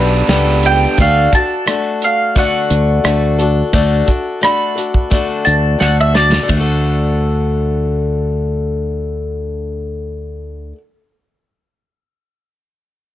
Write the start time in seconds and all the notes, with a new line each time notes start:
Already playing: B1 B3 D4 G4 A4 B4
0.28 C#2 B3 D4 G4 A4 B4, snare, closed hi-hat
0.63 G5, closed hi-hat
0.98 D2 D3 A3 D4 F#4 A4 F5, kick, closed hi-hat
1.32 D4 F#4 A4 A5, kick, closed hi-hat
1.66 A3 D4 F#4 A4, cross-stick, closed hi-hat
2.02 F5, closed hi-hat
2.35 D3 A3 D4 F#4 A4 F#5, kick, closed hi-hat
2.70 D2, closed hi-hat
3.04 D2 A3 D4 F#4 A4, cross-stick, closed hi-hat
3.38 D4 F#4 A4, closed hi-hat
3.73 D2 D3 A3 D4 F#4 A4, kick, closed hi-hat
4.06 D4 F#4 A4, kick, closed hi-hat
4.41 A3 D4 F#4 A4 B5, cross-stick, closed hi-hat
4.75 D4 F#4 A4, closed hi-hat
4.94 kick
5.10 D3 A3 D4 F#4 A4, kick, closed hi-hat
5.45 D2 A5, closed hi-hat
5.79 D2 A3 D4 F#4 A4 F#5, snare
6.00 E5
6.14 D4 F#4 A4 D5, snare
6.32 snare
6.43 D3
6.48 D2 A3, kick, ride
6.53 D4 F#4
6.61 A4